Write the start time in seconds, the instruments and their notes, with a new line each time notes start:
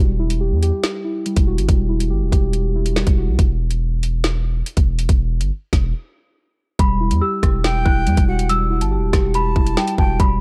0.00 808-style bass E1, synth keys G3
0.19 synth keys E4
0.30 closed hi-hat
0.41 synth keys G4
0.52 808-style bass E2
0.63 synth keys G4, closed hi-hat
0.84 snare
1.05 synth keys E4
1.26 synth keys G3, closed hi-hat
1.36 808-style bass E1, kick, closed hi-hat
1.47 synth keys F#4
1.58 808-style bass G1, closed hi-hat
1.69 808-style bass E1, synth keys G3, kick, closed hi-hat
1.89 synth keys E4
2.00 closed hi-hat
2.10 808-style bass G1, synth keys G4
2.22 808-style bass E1
2.32 808-style bass E1, synth keys G4, kick, closed hi-hat
2.53 closed hi-hat
2.75 synth keys E4
2.86 closed hi-hat
2.96 synth keys G3, snare
3.07 808-style bass E1, kick, closed hi-hat
3.18 synth keys F#4
3.28 808-style bass B1
3.39 808-style bass E1, kick, closed hi-hat
3.71 closed hi-hat
4.03 closed hi-hat
4.24 snare
4.66 closed hi-hat
4.77 808-style bass E1, kick, closed hi-hat
4.99 closed hi-hat
5.09 808-style bass E1, kick, closed hi-hat
5.41 808-style bass G1, closed hi-hat
5.73 808-style bass E1, kick, snare, closed hi-hat
6.79 808-style bass E1, synth keys G3, celesta B5, kick, closed hi-hat
7.00 synth keys E4
7.11 808-style bass E2, closed hi-hat
7.21 synth keys G4, celesta E6
7.43 808-style bass E1, synth keys G4, kick, cross-stick, closed hi-hat
7.64 flute G5, snare
7.85 808-style bass E1, synth keys E4, celesta F#6, kick
8.07 808-style bass E2, synth keys G3, closed hi-hat
8.17 808-style bass E1, kick, closed hi-hat
8.28 synth keys F#4, flute F#5
8.39 closed hi-hat
8.49 synth keys G3, celesta E6, closed hi-hat
8.70 synth keys E4
8.81 808-style bass G1, celesta A5, closed hi-hat
8.91 synth keys G4
8.97 808-style bass E1
9.12 808-style bass E1, synth keys G4, kick, cross-stick, snare, closed hi-hat
9.34 flute A5, celesta B5, closed hi-hat
9.56 808-style bass E1, synth keys E4, kick
9.67 closed hi-hat
9.77 synth keys G3, celesta G5, snare
9.88 closed hi-hat
9.98 808-style bass E1, synth keys F#4, flute G5, celesta A5, kick
10.20 808-style bass E1, synth keys G3, celesta B5, kick, closed hi-hat